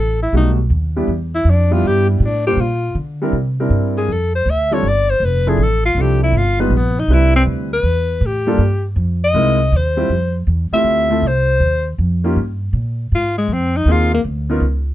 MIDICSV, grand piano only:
0, 0, Header, 1, 2, 480
1, 0, Start_track
1, 0, Tempo, 375704
1, 1390, Time_signature, 4, 2, 24, 8
1, 19092, End_track
2, 0, Start_track
2, 0, Title_t, "Grand piano"
2, 0, Program_c, 0, 0
2, 428, Note_on_c, 0, 55, 56
2, 436, Note_on_c, 0, 57, 54
2, 441, Note_on_c, 0, 63, 51
2, 443, Note_on_c, 0, 66, 68
2, 444, Note_on_c, 0, 59, 52
2, 712, Note_off_c, 0, 55, 0
2, 716, Note_off_c, 0, 57, 0
2, 718, Note_off_c, 0, 63, 0
2, 720, Note_off_c, 0, 59, 0
2, 720, Note_off_c, 0, 66, 0
2, 1232, Note_on_c, 0, 55, 63
2, 1232, Note_on_c, 0, 59, 59
2, 1234, Note_on_c, 0, 62, 60
2, 1238, Note_on_c, 0, 64, 60
2, 1238, Note_on_c, 0, 67, 71
2, 1377, Note_off_c, 0, 55, 0
2, 1377, Note_off_c, 0, 59, 0
2, 1378, Note_off_c, 0, 62, 0
2, 1380, Note_off_c, 0, 67, 0
2, 1381, Note_off_c, 0, 64, 0
2, 2182, Note_on_c, 0, 59, 57
2, 2186, Note_on_c, 0, 62, 61
2, 2187, Note_on_c, 0, 55, 62
2, 2189, Note_on_c, 0, 64, 57
2, 2200, Note_on_c, 0, 67, 71
2, 2793, Note_off_c, 0, 59, 0
2, 2796, Note_off_c, 0, 55, 0
2, 2796, Note_off_c, 0, 62, 0
2, 2797, Note_off_c, 0, 64, 0
2, 2803, Note_off_c, 0, 67, 0
2, 3160, Note_on_c, 0, 55, 55
2, 3160, Note_on_c, 0, 58, 49
2, 3164, Note_on_c, 0, 62, 53
2, 3165, Note_on_c, 0, 65, 51
2, 3166, Note_on_c, 0, 72, 62
2, 3299, Note_off_c, 0, 55, 0
2, 3299, Note_off_c, 0, 58, 0
2, 3301, Note_off_c, 0, 62, 0
2, 3302, Note_off_c, 0, 65, 0
2, 3302, Note_off_c, 0, 72, 0
2, 4109, Note_on_c, 0, 55, 72
2, 4117, Note_on_c, 0, 60, 65
2, 4120, Note_on_c, 0, 62, 66
2, 4123, Note_on_c, 0, 64, 63
2, 4129, Note_on_c, 0, 70, 77
2, 4253, Note_off_c, 0, 55, 0
2, 4257, Note_off_c, 0, 60, 0
2, 4259, Note_off_c, 0, 62, 0
2, 4260, Note_off_c, 0, 64, 0
2, 4263, Note_off_c, 0, 70, 0
2, 4598, Note_on_c, 0, 55, 62
2, 4598, Note_on_c, 0, 60, 61
2, 4602, Note_on_c, 0, 70, 75
2, 4606, Note_on_c, 0, 62, 57
2, 4610, Note_on_c, 0, 64, 59
2, 5199, Note_off_c, 0, 60, 0
2, 5200, Note_off_c, 0, 55, 0
2, 5202, Note_off_c, 0, 70, 0
2, 5204, Note_off_c, 0, 62, 0
2, 5206, Note_off_c, 0, 64, 0
2, 6021, Note_on_c, 0, 55, 67
2, 6030, Note_on_c, 0, 60, 65
2, 6031, Note_on_c, 0, 65, 64
2, 6034, Note_on_c, 0, 62, 62
2, 6035, Note_on_c, 0, 69, 81
2, 6168, Note_off_c, 0, 55, 0
2, 6172, Note_off_c, 0, 60, 0
2, 6173, Note_off_c, 0, 65, 0
2, 6174, Note_off_c, 0, 62, 0
2, 6175, Note_off_c, 0, 69, 0
2, 6986, Note_on_c, 0, 60, 57
2, 6987, Note_on_c, 0, 64, 62
2, 6988, Note_on_c, 0, 53, 68
2, 6990, Note_on_c, 0, 62, 62
2, 6994, Note_on_c, 0, 69, 72
2, 7129, Note_off_c, 0, 60, 0
2, 7130, Note_off_c, 0, 64, 0
2, 7131, Note_off_c, 0, 53, 0
2, 7131, Note_off_c, 0, 62, 0
2, 7133, Note_off_c, 0, 69, 0
2, 7632, Note_on_c, 0, 53, 52
2, 7633, Note_on_c, 0, 60, 46
2, 7634, Note_on_c, 0, 62, 46
2, 7637, Note_on_c, 0, 64, 49
2, 7641, Note_on_c, 0, 69, 55
2, 8105, Note_off_c, 0, 53, 0
2, 8106, Note_off_c, 0, 60, 0
2, 8107, Note_off_c, 0, 62, 0
2, 8108, Note_off_c, 0, 64, 0
2, 8110, Note_off_c, 0, 69, 0
2, 8424, Note_on_c, 0, 55, 72
2, 8432, Note_on_c, 0, 71, 79
2, 8433, Note_on_c, 0, 59, 69
2, 8435, Note_on_c, 0, 63, 62
2, 8436, Note_on_c, 0, 65, 61
2, 8568, Note_off_c, 0, 55, 0
2, 8572, Note_off_c, 0, 59, 0
2, 8572, Note_off_c, 0, 71, 0
2, 8573, Note_off_c, 0, 63, 0
2, 8574, Note_off_c, 0, 65, 0
2, 9073, Note_on_c, 0, 55, 59
2, 9074, Note_on_c, 0, 60, 53
2, 9074, Note_on_c, 0, 64, 54
2, 9075, Note_on_c, 0, 62, 53
2, 9085, Note_on_c, 0, 71, 67
2, 9797, Note_off_c, 0, 55, 0
2, 9797, Note_off_c, 0, 60, 0
2, 9797, Note_off_c, 0, 64, 0
2, 9798, Note_off_c, 0, 62, 0
2, 9803, Note_off_c, 0, 71, 0
2, 10817, Note_on_c, 0, 58, 70
2, 10821, Note_on_c, 0, 55, 78
2, 10829, Note_on_c, 0, 62, 70
2, 10830, Note_on_c, 0, 65, 69
2, 10831, Note_on_c, 0, 69, 81
2, 10965, Note_off_c, 0, 58, 0
2, 10967, Note_off_c, 0, 55, 0
2, 10971, Note_off_c, 0, 62, 0
2, 10971, Note_off_c, 0, 65, 0
2, 10972, Note_off_c, 0, 69, 0
2, 11936, Note_on_c, 0, 56, 76
2, 11940, Note_on_c, 0, 60, 68
2, 11944, Note_on_c, 0, 63, 66
2, 11951, Note_on_c, 0, 64, 66
2, 11952, Note_on_c, 0, 70, 78
2, 12221, Note_off_c, 0, 56, 0
2, 12223, Note_off_c, 0, 60, 0
2, 12225, Note_off_c, 0, 63, 0
2, 12228, Note_off_c, 0, 64, 0
2, 12229, Note_off_c, 0, 70, 0
2, 12735, Note_on_c, 0, 55, 66
2, 12737, Note_on_c, 0, 60, 60
2, 12739, Note_on_c, 0, 65, 59
2, 12744, Note_on_c, 0, 64, 61
2, 12753, Note_on_c, 0, 67, 78
2, 12885, Note_off_c, 0, 55, 0
2, 12886, Note_off_c, 0, 60, 0
2, 12887, Note_off_c, 0, 65, 0
2, 12889, Note_off_c, 0, 64, 0
2, 12894, Note_off_c, 0, 67, 0
2, 13703, Note_on_c, 0, 60, 55
2, 13705, Note_on_c, 0, 57, 64
2, 13707, Note_on_c, 0, 64, 55
2, 13711, Note_on_c, 0, 67, 69
2, 13716, Note_on_c, 0, 65, 57
2, 14150, Note_off_c, 0, 60, 0
2, 14151, Note_off_c, 0, 57, 0
2, 14152, Note_off_c, 0, 64, 0
2, 14154, Note_off_c, 0, 67, 0
2, 14157, Note_off_c, 0, 65, 0
2, 14189, Note_on_c, 0, 57, 68
2, 14189, Note_on_c, 0, 64, 61
2, 14191, Note_on_c, 0, 60, 61
2, 14191, Note_on_c, 0, 65, 63
2, 14199, Note_on_c, 0, 69, 73
2, 14334, Note_off_c, 0, 57, 0
2, 14334, Note_off_c, 0, 64, 0
2, 14335, Note_off_c, 0, 60, 0
2, 14335, Note_off_c, 0, 65, 0
2, 14339, Note_off_c, 0, 69, 0
2, 15640, Note_on_c, 0, 58, 69
2, 15644, Note_on_c, 0, 61, 67
2, 15647, Note_on_c, 0, 63, 60
2, 15652, Note_on_c, 0, 67, 76
2, 15653, Note_on_c, 0, 65, 65
2, 15781, Note_off_c, 0, 58, 0
2, 15783, Note_off_c, 0, 61, 0
2, 15785, Note_off_c, 0, 63, 0
2, 15787, Note_off_c, 0, 67, 0
2, 15788, Note_off_c, 0, 65, 0
2, 17733, Note_on_c, 0, 58, 65
2, 17737, Note_on_c, 0, 63, 58
2, 17741, Note_on_c, 0, 60, 64
2, 17747, Note_on_c, 0, 68, 73
2, 17748, Note_on_c, 0, 65, 63
2, 18006, Note_off_c, 0, 58, 0
2, 18008, Note_off_c, 0, 63, 0
2, 18010, Note_off_c, 0, 60, 0
2, 18013, Note_off_c, 0, 68, 0
2, 18014, Note_off_c, 0, 65, 0
2, 18519, Note_on_c, 0, 59, 72
2, 18520, Note_on_c, 0, 61, 65
2, 18526, Note_on_c, 0, 63, 68
2, 18532, Note_on_c, 0, 65, 69
2, 18538, Note_on_c, 0, 70, 83
2, 18664, Note_off_c, 0, 59, 0
2, 18664, Note_off_c, 0, 61, 0
2, 18668, Note_off_c, 0, 63, 0
2, 18670, Note_off_c, 0, 65, 0
2, 18673, Note_off_c, 0, 70, 0
2, 19092, End_track
0, 0, End_of_file